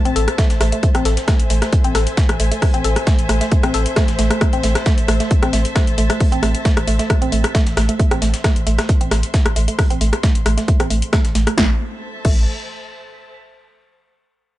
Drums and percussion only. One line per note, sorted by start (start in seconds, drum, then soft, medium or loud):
0.05 closed hi-hat medium
0.16 closed hi-hat medium
0.16 open hi-hat loud
0.28 cross-stick medium
0.28 closed hi-hat medium
0.38 kick loud
0.38 snare loud
0.38 closed hi-hat medium
0.50 snare soft
0.50 closed hi-hat medium
0.61 cross-stick medium
0.61 snare medium
0.61 closed hi-hat medium
0.61 open hi-hat loud
0.72 closed hi-hat medium
0.83 kick loud
0.83 closed hi-hat medium
0.95 cross-stick medium
0.95 closed hi-hat medium
1.05 snare soft
1.05 closed hi-hat medium
1.05 open hi-hat loud
1.17 snare soft
1.17 closed hi-hat medium
1.28 kick loud
1.28 cross-stick medium
1.28 snare loud
1.28 closed hi-hat medium
1.40 closed hi-hat medium
1.50 closed hi-hat medium
1.50 open hi-hat loud
1.62 cross-stick medium
1.62 snare soft
1.62 closed hi-hat medium
1.72 kick loud
1.72 closed hi-hat medium
1.84 closed hi-hat medium
1.95 cross-stick medium
1.95 snare soft
1.95 closed hi-hat medium
1.95 open hi-hat loud
2.07 closed hi-hat medium
2.07 closed hi-hat soft
2.17 kick loud
2.17 snare loud
2.17 closed hi-hat medium
2.29 cross-stick medium
2.29 closed hi-hat medium
2.40 closed hi-hat medium
2.40 open hi-hat loud
2.52 closed hi-hat medium
2.52 closed hi-hat soft
2.62 kick loud
2.62 cross-stick medium
2.62 closed hi-hat medium
2.62 open hi-hat medium
2.74 closed hi-hat soft
2.74 closed hi-hat medium
2.84 closed hi-hat medium
2.84 open hi-hat loud
2.96 cross-stick medium
2.96 closed hi-hat medium
3.07 kick loud
3.07 snare loud
3.07 closed hi-hat medium
3.19 closed hi-hat medium
3.29 cross-stick medium
3.29 closed hi-hat medium
3.29 open hi-hat medium
3.41 snare soft
3.41 closed hi-hat medium
3.52 kick loud
3.52 closed hi-hat medium
3.63 cross-stick medium
3.63 closed hi-hat medium
3.74 closed hi-hat medium
3.74 open hi-hat loud
3.86 closed hi-hat medium
3.96 kick loud
3.96 cross-stick medium
3.96 snare loud
3.96 closed hi-hat medium
4.08 snare soft
4.08 closed hi-hat medium
4.19 snare medium
4.19 closed hi-hat medium
4.19 open hi-hat loud
4.31 cross-stick medium
4.31 closed hi-hat medium
4.41 kick loud
4.41 cross-stick medium
4.41 closed hi-hat medium
4.53 closed hi-hat medium
4.63 snare soft
4.63 closed hi-hat medium
4.63 open hi-hat loud
4.75 cross-stick medium
4.75 snare soft
4.75 closed hi-hat medium
4.86 kick loud
4.86 snare loud
4.86 closed hi-hat medium
4.98 closed hi-hat medium
5.08 cross-stick medium
5.08 closed hi-hat medium
5.08 open hi-hat medium
5.20 snare soft
5.20 closed hi-hat medium
5.31 kick loud
5.31 closed hi-hat medium
5.43 cross-stick medium
5.43 closed hi-hat medium
5.53 snare soft
5.53 closed hi-hat medium
5.53 open hi-hat loud
5.65 closed hi-hat medium
5.65 closed hi-hat soft
5.76 kick loud
5.76 cross-stick medium
5.76 snare loud
5.76 closed hi-hat medium
5.87 closed hi-hat medium
5.98 closed hi-hat medium
5.98 open hi-hat loud
6.10 cross-stick medium
6.10 closed hi-hat medium
6.10 closed hi-hat soft
6.20 kick loud
6.20 closed hi-hat medium
6.20 open hi-hat medium
6.32 closed hi-hat medium
6.32 closed hi-hat soft
6.43 cross-stick medium
6.43 closed hi-hat medium
6.43 open hi-hat loud
6.55 closed hi-hat medium
6.65 kick loud
6.65 snare loud
6.65 closed hi-hat medium
6.77 cross-stick medium
6.77 closed hi-hat medium
6.88 closed hi-hat medium
6.88 open hi-hat medium
6.99 snare soft
6.99 closed hi-hat medium
7.10 kick loud
7.10 cross-stick medium
7.10 closed hi-hat medium
7.22 closed hi-hat medium
7.32 closed hi-hat medium
7.32 open hi-hat loud
7.44 cross-stick medium
7.44 closed hi-hat medium
7.55 kick loud
7.55 snare loud
7.55 closed hi-hat medium
7.67 snare soft
7.67 closed hi-hat medium
7.77 cross-stick medium
7.77 snare medium
7.77 closed hi-hat medium
7.77 open hi-hat medium
7.89 closed hi-hat medium
7.99 kick loud
7.99 closed hi-hat medium
8.11 cross-stick medium
8.11 closed hi-hat medium
8.22 snare soft
8.22 closed hi-hat medium
8.22 open hi-hat loud
8.34 snare soft
8.34 closed hi-hat medium
8.44 kick loud
8.44 cross-stick medium
8.44 snare loud
8.44 closed hi-hat medium
8.56 closed hi-hat medium
8.67 closed hi-hat medium
8.67 open hi-hat medium
8.79 cross-stick medium
8.79 snare soft
8.79 closed hi-hat medium
8.89 kick loud
8.89 closed hi-hat medium
9.01 closed hi-hat medium
9.11 cross-stick medium
9.11 snare soft
9.11 closed hi-hat medium
9.11 open hi-hat loud
9.23 closed hi-hat medium
9.23 closed hi-hat soft
9.34 kick loud
9.34 snare loud
9.34 closed hi-hat medium
9.46 cross-stick medium
9.46 closed hi-hat medium
9.56 closed hi-hat medium
9.56 open hi-hat medium
9.68 closed hi-hat medium
9.68 closed hi-hat soft
9.79 kick loud
9.79 cross-stick medium
9.79 closed hi-hat medium
9.79 open hi-hat medium
9.90 closed hi-hat medium
9.90 closed hi-hat soft
10.01 closed hi-hat medium
10.01 open hi-hat loud
10.13 cross-stick medium
10.13 closed hi-hat medium
10.23 kick loud
10.23 snare loud
10.23 closed hi-hat medium
10.35 closed hi-hat medium
10.46 cross-stick medium
10.46 closed hi-hat medium
10.46 open hi-hat medium
10.58 snare soft
10.58 closed hi-hat medium
10.68 kick loud
10.68 closed hi-hat medium
10.80 cross-stick medium
10.80 closed hi-hat medium
10.90 closed hi-hat medium
10.90 open hi-hat loud
11.02 closed hi-hat medium
11.13 kick loud
11.13 cross-stick medium
11.13 snare loud
11.13 closed hi-hat medium
11.25 snare soft
11.25 closed hi-hat medium
11.35 snare medium
11.35 closed hi-hat medium
11.35 open hi-hat medium
11.47 cross-stick medium
11.47 closed hi-hat medium
11.58 kick loud
11.58 snare medium
12.25 kick loud
12.25 crash medium